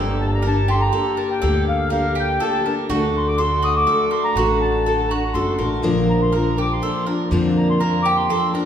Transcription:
0.00 0.89 G1 loud
0.00 0.43 G2 medium
0.00 0.44 D3 medium
0.00 0.43 A#3 medium
0.00 2.86 A#3 medium
0.00 0.44 D4 medium
0.00 0.44 G4 medium
0.00 2.86 G4 medium
0.00 0.42 A4 medium
0.00 0.46 A4 medium
0.21 0.27 A5 medium
0.28 0.31 A5 medium
0.34 0.45 A#5 medium
0.42 0.68 A#3 medium
0.42 0.69 D4 medium
0.42 0.69 G4 medium
0.42 0.67 A#4 medium
0.47 0.68 A4 medium
0.47 0.71 A5 loud
0.68 0.91 A#3 soft
0.68 0.92 D4 soft
0.68 0.92 G4 medium
0.68 0.93 G4 soft
0.68 0.93 A4 soft
0.68 0.81 C6 loud
0.81 1.19 A#5 medium
0.92 1.42 A#3 medium
0.92 1.42 D4 medium
0.92 1.42 G4 medium
0.92 1.17 A4 medium
0.92 1.43 A4 medium
1.17 1.41 A#4 medium
1.17 1.29 A5 medium
1.31 1.65 G5 medium
1.42 2.36 D2 loud
1.42 1.91 G2 medium
1.42 1.91 D3 medium
1.42 1.89 A#3 medium
1.42 1.91 D4 medium
1.42 1.91 G4 medium
1.42 1.90 A4 loud
1.42 1.92 A4 medium
1.69 1.90 F5 medium
1.90 2.39 A#3 medium
1.90 2.41 D4 medium
1.90 2.41 G4 medium
1.90 2.42 A4 medium
1.90 2.15 A#4 medium
1.90 2.16 F5 medium
2.15 2.39 G4 medium
2.19 2.43 G5 loud
2.40 2.65 A#3 medium
2.40 2.65 D4 medium
2.40 2.65 G4 medium
2.40 2.64 A4 medium
2.40 2.75 A5 medium
2.65 2.89 A#3 soft
2.65 2.89 D4 medium
2.65 2.90 G4 soft
2.65 2.89 A4 soft
2.65 2.89 A#4 medium
2.88 3.84 D2 loud
2.88 5.81 D3 medium
2.88 4.37 D3 medium
2.88 5.80 A3 medium
2.88 3.37 A3 loud
2.88 3.40 D4 medium
2.88 5.81 F#4 medium
2.88 3.38 F#4 medium
2.88 3.39 F#4 loud
2.88 3.39 A4 loud
3.18 3.27 C6 medium
3.28 3.40 D6 medium
3.38 3.86 A3 medium
3.38 3.87 D4 medium
3.38 3.87 F#4 medium
3.38 3.62 A4 medium
3.38 3.88 A4 medium
3.38 3.63 C6 loud
3.62 3.87 F#4 medium
3.62 3.75 D#6 loud
3.77 4.10 D6 medium
3.87 4.36 A3 medium
3.87 4.38 D4 medium
3.87 4.37 F#4 medium
3.87 4.10 A4 medium
3.87 4.37 A4 medium
4.11 4.35 A#4 medium
4.11 4.23 C6 medium
4.24 4.59 A#5 loud
4.36 5.30 A1 loud
4.36 4.86 D3 medium
4.36 4.85 A3 medium
4.36 4.87 D4 medium
4.36 4.85 F#4 loud
4.36 4.86 F#4 medium
4.36 4.87 A4 medium
4.61 5.12 A5 medium
4.86 5.11 A3 medium
4.86 5.11 D4 medium
4.86 5.10 F#4 medium
4.86 5.10 A4 medium
4.86 5.09 A4 medium
5.08 5.35 F#4 medium
5.08 5.35 F#4 soft
5.08 5.35 A4 soft
5.08 5.35 A#5 medium
5.13 5.34 D4 soft
5.34 5.57 F#1 medium
5.34 5.59 A3 medium
5.34 5.60 D4 medium
5.34 5.59 F#4 medium
5.34 5.58 A4 medium
5.34 5.59 A4 medium
5.34 5.69 C6 medium
5.59 5.81 A1 medium
5.59 5.83 D4 soft
5.59 5.84 F#4 medium
5.59 5.84 A4 medium
5.59 5.83 A#4 medium
5.82 6.78 A#1 loud
5.82 6.32 A#2 medium
5.82 6.33 D3 medium
5.82 8.65 F3 medium
5.82 6.32 F3 loud
5.82 8.65 A#3 medium
5.82 6.32 A#3 loud
5.82 8.65 D4 medium
5.82 6.33 D4 medium
5.82 6.33 A#4 loud
6.10 6.21 A#5 medium
6.22 6.33 C6 medium
6.32 6.57 F3 medium
6.32 6.58 A#3 medium
6.32 6.57 D4 medium
6.32 6.57 A#4 medium
6.32 6.56 A#4 medium
6.32 6.57 A#5 medium
6.57 6.81 F3 soft
6.57 6.82 A#3 soft
6.57 6.82 D4 soft
6.57 6.82 G4 medium
6.57 6.82 A#4 soft
6.57 6.72 D6 loud
6.73 7.06 C6 medium
6.82 7.07 F3 medium
6.82 7.07 A#3 medium
6.82 7.06 D4 medium
6.82 7.06 A4 medium
6.82 7.05 A#4 medium
7.06 7.31 F3 soft
7.06 7.31 A#3 soft
7.06 7.31 D4 medium
7.06 7.31 A#4 soft
7.06 7.31 A#4 medium
7.31 8.26 F2 loud
7.31 7.80 A#2 medium
7.31 7.81 D3 medium
7.31 7.81 F3 loud
7.31 7.81 A#3 medium
7.31 7.81 D4 loud
7.31 7.81 A#4 loud
7.58 7.68 A#5 medium
7.70 7.81 C6 medium
7.80 8.28 F3 medium
7.80 8.29 A#3 medium
7.80 8.30 D4 medium
7.80 8.05 A#4 medium
7.80 8.30 A#4 medium
7.80 8.06 A#5 medium
8.03 8.29 G4 medium
8.03 8.17 D6 loud
8.17 8.51 C6 medium
8.29 8.54 F3 medium
8.29 8.54 A#3 medium
8.29 8.53 D4 medium
8.29 8.54 A4 medium
8.29 8.52 A#4 medium
8.54 8.65 F3 soft
8.54 8.65 A#3 soft
8.54 8.65 D4 medium
8.54 8.65 A#4 medium

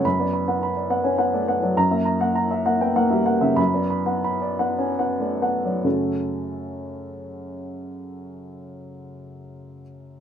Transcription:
0.05 1.72 F#2 soft
0.05 0.28 B5 medium
0.20 0.42 B3 soft
0.20 0.42 D5 soft
0.33 0.56 B5 soft
0.48 0.70 B3 soft
0.48 0.70 F#5 soft
0.63 0.85 B5 soft
0.76 0.98 D5 soft
0.90 1.13 B3 soft
0.90 1.13 F#5 soft
1.04 1.18 C#4 soft
1.04 1.18 G#5 soft
1.18 1.41 B3 soft
1.18 1.41 F#5 soft
1.33 1.47 A3 soft
1.33 1.56 D5 soft
1.48 1.70 B3 soft
1.48 1.70 F#5 soft
1.63 1.76 F#3 soft
1.63 1.76 D5 soft
1.77 3.54 F#2 medium
1.77 1.99 A#5 medium
1.91 2.14 A#3 soft
1.91 2.14 E5 soft
2.05 2.29 A#5 soft
2.21 2.44 A#3 soft
2.21 2.44 F#5 soft
2.35 2.59 A#5 soft
2.51 2.75 E5 soft
2.66 2.90 A#3 soft
2.66 2.90 F#5 soft
2.81 2.96 B3 soft
2.81 2.96 G5 soft
2.96 3.20 A#3 soft
2.96 3.20 F#5 soft
3.10 3.26 G3 soft
3.10 3.35 E5 soft
3.26 3.51 A#3 soft
3.26 3.51 F#5 soft
3.41 3.58 C#3 soft
3.41 3.57 E5 soft
3.56 5.79 F#2 medium
3.56 3.83 B5 medium
3.74 4.01 B3 soft
3.74 4.01 D5 soft
3.90 4.18 B5 soft
4.06 4.35 B3 soft
4.06 4.35 F#5 soft
4.24 4.53 B5 soft
4.42 4.72 D5 soft
4.59 4.91 B3 soft
4.59 4.91 F#5 soft
4.78 4.99 C#4 soft
4.78 4.99 G#5 soft
4.99 5.33 B3 soft
4.99 5.34 F#5 soft
5.20 5.43 A3 soft
5.20 5.56 D5 soft
5.42 5.76 B3 soft
5.42 5.76 F#5 soft
5.65 5.84 F#3 soft
5.65 5.84 D5 soft
5.84 9.81 F#2 soft
5.84 9.81 C#3 soft
5.84 9.81 A3 soft
5.84 9.81 C#4 soft
5.84 9.82 F#4 soft
5.84 9.82 A4 soft

